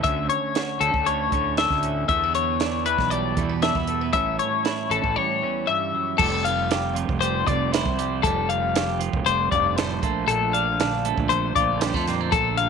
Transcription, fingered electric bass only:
0.04 D2
0.80 D2
0.94 D2
1.32 D2
1.70 D2
2.09 E2
2.98 B1
3.37 E2
3.75 E2
4.14 A1
4.90 A1
5.04 A1
6.19 F1
7.09 F1
7.47 F1
7.85 C2
8.24 F1
9.13 F1
9.25 F1
9.52 F1
10.03 A#1
10.28 A#1
11.17 A#1
11.56 A#1
11.94 F2
12.32 A#1

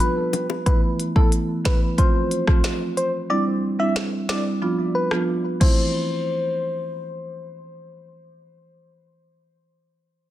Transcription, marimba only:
0.66 E3 A3 B3 E4
1.16 E3 A3 B3 E4
1.65 E3 A3 B3 E4
1.98 F3 A3 C4 F4
2.48 F3 A3 C4 F4
3.30 G3 C4 D4 E4
3.79 G3 C4 D4 E4
4.29 G3 C4 D4 E4
4.62 F3 B3 D4 F4
5.11 F3 B3 D4 F4
5.60 E3 A3 C4 E4

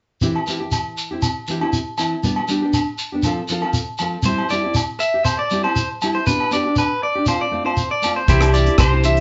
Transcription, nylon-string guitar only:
0.21 E3 C4 E4 G4
0.47 E3 C4 E4 G4
0.60 G4, muted nylon-string guitar stroke
1.11 C4 E4 G4
1.48 E3 C4 E4 G4
1.61 C4 E4 G4
1.98 E3 C4 E4
2.23 G3 B3 D4 G4
2.48 G3 B3 D4 G4
2.62 B3 D4 G4
3.12 B3 D4 G4
3.24 F3 C4 F4 A4
3.49 F3 C4 F4 A4
3.63 C4 F4 A4
4.00 F3 C4 F4 A4
4.24 G3 C4 E4 G4
4.50 G3 C4 E4 G4
4.64 C4 E4 G4
5.14 G4, muted nylon-string guitar stroke
5.51 G3 C4 E4 G4
5.63 C4 E4 G4
6.02 G3 C4 E4 G4
6.27 B3 D4 G4
6.51 B3 D4 G4
6.65 D4 G4
7.15 D4 G4
7.27 C4 F4, muted nylon-string guitar stroke
7.51 A3 C4 F4
7.65 C4 F4
8.02 A3 C4 F4
8.28 E3 C4 E4 G4
8.53 E3 C4 E4 G4
8.68 C4 E4
8.92 C4 E4 G4
9.04 E3 C4 E4 G4

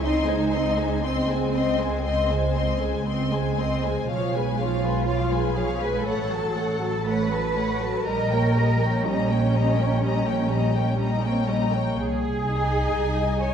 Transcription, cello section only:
0.05 D#4
1.05 C4
4.59 F4
5.57 G#4
5.82 B4
6.06 A4
7.07 B4
8.06 A#4
9.05 C#4
11.13 D#4
11.21 C#4
11.29 C4
11.39 C#4
11.98 G#4
13.42 C#5

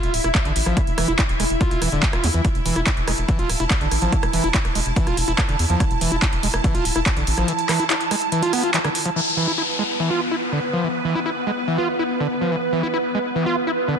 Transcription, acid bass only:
0.03 F4
0.24 E4
0.45 D3
0.66 F3
0.77 E3
0.98 E3
1.08 E4
1.19 E4
1.40 G#3
1.61 F4
1.71 F4
1.82 E3
1.92 D3
2.13 F4
2.24 E3
2.34 E3
2.45 E3
2.66 E3
2.76 E4
2.87 E4
3.08 G#3
3.29 E3
3.39 F4
3.60 E4
3.81 D3
4.02 F3
4.12 E3
4.33 E3
4.44 E4
4.54 E4
4.75 G#3
4.96 E3
5.07 F4
5.28 E4
5.49 D3
5.70 F3
5.80 E3
6.01 E3
6.12 E4
6.22 E4
6.43 G#3
6.64 E3
6.75 F4
6.96 E4
7.17 D3
7.38 F3
7.48 E3
7.69 E3
7.80 E4
7.90 E4
8.11 G#3
8.32 E3
8.43 F4
8.53 B3
8.64 F4
8.74 E3
8.85 D3
9.06 F3
9.16 E3
9.37 E3
9.47 E4
9.58 E4
9.79 G#3
10.00 E3
10.10 F4
10.31 E4
10.52 D3
10.73 F3
10.84 E3
11.05 E3
11.15 E4
11.26 E4
11.47 G#3
11.68 E3
11.78 F4
11.99 E4
12.20 D3
12.41 F3
12.52 E3
12.73 E3
12.83 E4
12.94 E4
13.15 G#3
13.36 E3
13.46 F4
13.67 E4
13.88 D3

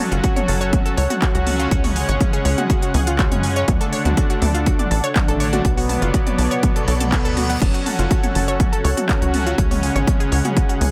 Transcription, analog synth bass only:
0.12 F#1
0.48 F#1
0.97 C#2
1.35 C#2
1.71 C#2
2.09 G#1
2.45 C#2
2.94 C#2
3.32 F#2
3.68 D2
4.05 D2
4.42 D2
4.91 A1
5.28 A1
5.65 B1
6.02 F#1
6.38 B1
6.88 B1
7.25 D2
7.62 F#1
7.99 F#1
8.35 F#1
8.84 C#2
9.22 C#2
9.58 C#2
9.95 G#1
10.32 C#2
10.81 C#2

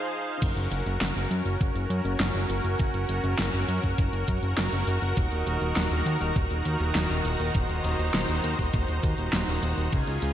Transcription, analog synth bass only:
0.42 F#1
0.56 F#1
0.71 F#1
0.86 F#1
1.01 F#1
1.16 F#1
1.31 F#2
1.45 F#1
1.61 F#1
1.75 F#1
1.90 F#2
2.05 F#1
2.20 F#1
2.34 F#1
2.49 F#1
2.64 F#1
2.79 F#1
2.94 F#1
3.09 F#1
3.24 F#1
3.39 F#1
3.53 F#1
3.68 F#2
3.83 F#1
3.98 F#1
4.13 F#1
4.28 F#2
4.43 F#1
4.58 F#1
4.72 F#1
4.87 F#1
5.02 F#1
5.17 D#1
5.32 D#1
5.46 D#1
5.61 D#1
5.76 D#1
5.91 D#1
6.06 D#2
6.21 D#1
6.36 D#1
6.50 D#1
6.66 D#2
6.80 D#1
6.95 D#1
7.10 D#1
7.25 D#1
7.40 D#1
7.55 D#1
7.69 D#1
7.84 D#1
7.99 D#1
8.14 D#1
8.29 D#1
8.44 D#2
8.59 D#1
8.74 D#1
8.89 D#1
9.03 D#2
9.18 D#1
9.33 D#1
9.48 D#1
9.63 D#1
9.78 D#1
9.92 C#2
10.07 C#2
10.22 C#2

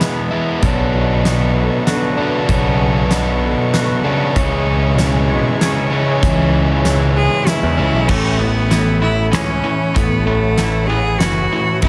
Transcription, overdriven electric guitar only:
Already playing: E3 G#3 B3 E4
0.31 E3 G#3 B3 E4
0.63 B2 F#3 B3 D4
2.17 B2 F#3 B3 D4
2.49 B2 F#3 B3 D4
4.04 B2 F#3 B3 D4
4.35 C#3 E3 G#3 C#4
5.90 C#3 E3 G#3 C#4
6.22 C#3 E3 G#3 C#4
7.77 C#3 E3 G#3 C#4

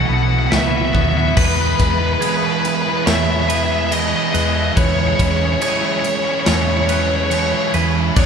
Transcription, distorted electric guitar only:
0.05 B2 E3
0.12 B2 E3
0.20 B2 E3
0.28 B2 E3
0.37 B2 E3
0.43 B2 E3
0.51 B2 E3
0.58 B2 E3
0.66 B2 E3
0.74 B2 E3
0.81 B2 E3
0.90 B2 E3
0.97 B2 E3
1.05 B2 E3
1.13 B2 E3
1.20 B2 E3
1.27 B2 E3
1.36 E3 G#3 B3 E4
1.78 E3 G#3 B3 E4
1.99 G#3 B3 E4
2.21 E3 G#3 B3 E4
2.63 E3 G#3 B3 E4
2.84 G#3 B3 E4
3.27 G#3 B3 E4
3.48 E3 G#3 B3 E4
3.69 G#3 B3 E4
3.90 E3 G#3 B3 E4
4.12 G#3 B3 E4
4.32 E3 G#3 B3 E4
4.75 E3 G#3 C#4 E4
5.18 E3 G#3 C#4 E4
5.39 G#3 C#4 E4
5.60 E3 G#3 C#4 E4
6.03 E3 G#3 C#4 E4
6.24 G#3 C#4 E4
6.67 G#3 C#4 E4
6.88 E3 G#3 C#4 E4
7.09 G#3 C#4 E4
7.30 E3 G#3 C#4 E4
7.52 G#3 C#4 E4
7.73 E3 G#3 C#4 E4
8.16 B2 F#3 B3 D4

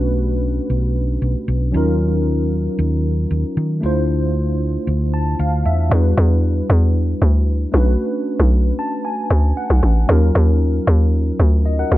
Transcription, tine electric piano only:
Already playing: A3 C#4 D4 F#4 B4
1.72 F#3 C#4 D#4 F4
1.77 A#4
3.81 A3 D4 E4 F4
3.86 C5
5.14 A5
5.40 F5
5.66 E5
5.89 G3 D4 E4 F#4
5.95 B4
7.72 A3 C#4 D4 F#4
7.77 B4
8.79 A5
9.05 G#5
9.57 F#5
10.07 F#3 C#4 D#4
10.11 F4 A#4
11.66 F#4 D#5
11.79 A#4 F#5
11.92 G#4 F5

